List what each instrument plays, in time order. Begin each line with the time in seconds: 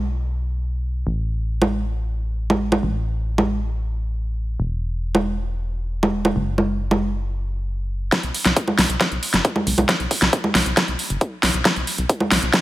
Already playing: fm bass B1
1.07 fm bass A1
1.62 high conga
2.50 high conga
2.72 high conga
2.83 fm bass A1
3.38 high conga
4.60 fm bass E1
5.15 high conga
6.03 high conga
6.25 high conga
6.36 fm bass F#1
6.58 high conga
6.91 high conga
8.12 kick, snare, closed hi-hat
8.23 fm bass B1, closed hi-hat
8.34 open hi-hat
8.46 fm bass B1, snare, closed hi-hat
8.56 kick, closed hi-hat
8.68 high conga
8.79 fm bass B1, snare, open hi-hat
8.89 fm bass B1, closed hi-hat
9.01 kick, snare, closed hi-hat
9.12 fm bass B1, closed hi-hat
9.23 open hi-hat
9.34 fm bass F#1, snare, closed hi-hat
9.45 kick, closed hi-hat
9.56 high conga
9.67 fm bass B1, open hi-hat
9.78 fm bass B1, closed hi-hat, high conga
9.89 kick, snare, closed hi-hat
10.00 fm bass B1, closed hi-hat
10.11 kick, open hi-hat
10.22 fm bass B1, snare, closed hi-hat
10.33 kick, closed hi-hat
10.44 high conga
10.55 fm bass B1, snare, open hi-hat
10.66 fm bass B1, closed hi-hat
10.77 kick, snare, closed hi-hat
10.88 fm bass B1, closed hi-hat
10.99 open hi-hat
11.10 fm bass F#1, closed hi-hat
11.21 kick, closed hi-hat
11.43 fm bass B1, snare, open hi-hat
11.54 fm bass B1, closed hi-hat
11.65 kick, snare, closed hi-hat
11.76 fm bass B1, closed hi-hat
11.87 open hi-hat
11.98 fm bass B1, closed hi-hat
12.09 kick, closed hi-hat
12.20 high conga
12.32 fm bass B1, snare, open hi-hat
12.43 fm bass B1, closed hi-hat
12.54 kick, snare, closed hi-hat